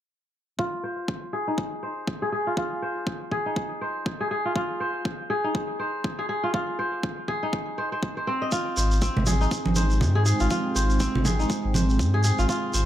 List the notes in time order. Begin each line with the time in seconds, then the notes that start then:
0.59 F4, kick
0.84 C5
1.08 kick
1.33 G#4
1.48 D#4
1.58 kick
1.83 C5
2.07 kick
2.22 G#4
2.32 G#4
2.47 F4
2.57 F4, kick
2.82 C5
3.07 kick
3.32 G#4, kick
3.46 D#4
3.56 kick
3.81 C5
4.06 kick
4.20 G#4
4.31 G#4
4.45 F4
4.56 F4, kick
4.80 C5
5.05 kick
5.30 G#4
5.44 D#4
5.55 kick
5.79 C5
6.04 kick
6.19 G#4
6.29 G#4
6.43 F4
6.54 F4, kick
6.79 C5
7.03 kick
7.28 G#4, kick
7.43 D#4
7.53 kick
7.78 C5
7.92 C5
8.03 kick
8.17 C5
8.27 C4
8.42 D#5
8.52 G#3 C4 D#4 F4 C5 G5, kick, shekere
8.77 G#1 C5, shekere
8.91 shekere
9.02 C4, kick, shekere
9.16 G#1, low conga
9.26 G#4, high conga, low conga, shekere
9.41 D#4, shekere
9.51 kick, shekere
9.66 G#1, high conga
9.76 C5, high conga, shekere
9.90 shekere
10.01 G#2, kick, low conga, shekere
10.15 G#4
10.26 G#4, shekere
10.40 G#1 F4, shekere
10.50 F4, kick, high conga, shekere
10.75 G#1 C5, shekere
10.90 shekere
11.00 C4, kick, shekere
11.15 G#1, low conga
11.25 G#4, kick, high conga, low conga, shekere
11.39 D#4, shekere
11.50 kick, shekere
11.64 G#1
11.74 C5, high conga, low conga, shekere
11.89 shekere
11.99 G#2, kick, shekere
12.14 G#4
12.24 G#4, shekere
12.38 G#1 F4, shekere
12.49 F4, kick, shekere
12.74 G#1 C5, shekere